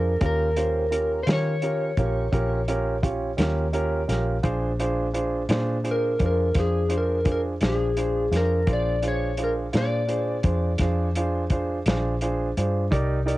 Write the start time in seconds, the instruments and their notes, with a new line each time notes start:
Already playing: fingered electric bass F2, upright piano D4 F4 G#4 C5, electric slide guitar A#4
0.21 fingered electric bass D#2, upright piano C#4 F4 G4 A#4, kick, closed hi-hat
0.26 electric slide guitar A#4
0.56 upright piano C#4 F4 G4 C5, closed hi-hat
0.91 upright piano C#4 F4 G4 A#4, closed hi-hat
1.23 fingered electric bass D#3, upright piano C#4 F4, electric slide guitar C5, closed hi-hat
1.27 upright piano G4 A#4, snare
1.33 electric slide guitar C#5
1.62 upright piano C#4 F4 G4 A#4, closed hi-hat
1.97 fingered electric bass A#1, upright piano C#4 F4 G4 A#4, kick, closed hi-hat
2.32 fingered electric bass A#1, upright piano C#4 F4 G4 A#4, kick, closed hi-hat
2.68 upright piano C#4 F4 G4 A#4, closed hi-hat
3.02 upright piano C#4 F4 G4 C#5, kick, closed hi-hat
3.37 fingered electric bass D#2, upright piano C#4 F4 G4 A#4, snare, closed hi-hat
3.73 upright piano C#4 F4 G4 A#4, closed hi-hat
4.08 fingered electric bass A#1, upright piano C#4 F4 G4 A#4, snare, closed hi-hat
4.43 fingered electric bass A#1, upright piano D4 F4 G#4 C5, kick, closed hi-hat
4.80 upright piano D4 F4 G#4 C5, closed hi-hat
5.14 upright piano D4 F4 G#4 C5, closed hi-hat
5.49 fingered electric bass A#2, upright piano D4 F4 G#4 C5, snare, closed hi-hat
5.84 upright piano D4 F4 G#4 C5, closed hi-hat
5.91 electric slide guitar A#4
6.19 fingered electric bass F2, upright piano D4 F4 G#4 C5, kick, closed hi-hat
6.26 electric slide guitar A#4
6.54 fingered electric bass F2, upright piano D4 F4 G#4 C5, kick, snare, closed hi-hat
6.60 electric slide guitar G#4
6.89 upright piano D4 F4 G#4 C5, closed hi-hat
6.98 electric slide guitar A#4
7.25 upright piano D4 F4 G#4 C5, kick, closed hi-hat
7.32 electric slide guitar A#4
7.61 fingered electric bass A#1, upright piano D4 F4 G#4 C5, snare, closed hi-hat
7.68 electric slide guitar G#4
7.97 upright piano D4 F4 G#4 C5, closed hi-hat
8.31 fingered electric bass F2, upright piano D4 F4 G#4 C5, snare, closed hi-hat
8.36 electric slide guitar A#4
8.67 fingered electric bass A#1, upright piano D4 F4 G#4 C5, kick, closed hi-hat
8.73 electric slide guitar D5
9.02 upright piano D4 F4 G#4 C5, closed hi-hat
9.08 electric slide guitar C#5
9.37 upright piano D4 F4 G#4 C5, closed hi-hat
9.44 electric slide guitar A#4
9.73 fingered electric bass A#2, upright piano D4 F4 G#4 C5, snare, closed hi-hat
9.78 electric slide guitar D5
10.07 upright piano D4 F4 G#4 C5, closed hi-hat
10.43 fingered electric bass F2, upright piano D4 F4 G#4 C5, kick, closed hi-hat
10.78 fingered electric bass F2, upright piano D4 F4 G#4 C5, kick, snare, closed hi-hat
11.12 electric slide guitar C5, closed hi-hat
11.16 upright piano D4 F4 G#4 C5
11.50 upright piano D4 F4 G#4 C5, kick, closed hi-hat
11.86 fingered electric bass A#1, upright piano D4 F4 G#4 C5, snare, closed hi-hat
12.21 upright piano D4 F4 G#4 C5, closed hi-hat
12.57 fingered electric bass G2, upright piano D4 F4 G#4 C5, closed hi-hat
12.91 fingered electric bass C2, upright piano D#4 G4 A#4 D5, kick, closed hi-hat
13.26 upright piano D#4 G4 A#4 D5, closed hi-hat